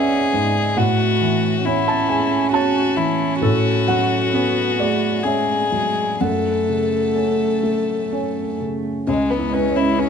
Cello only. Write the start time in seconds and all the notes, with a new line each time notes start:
Already playing: C#4
0.34 G#3
0.78 A3
1.64 C#4
4.34 B3
4.80 A3
5.27 G#3
5.74 G#3
6.22 A3
9.09 G#3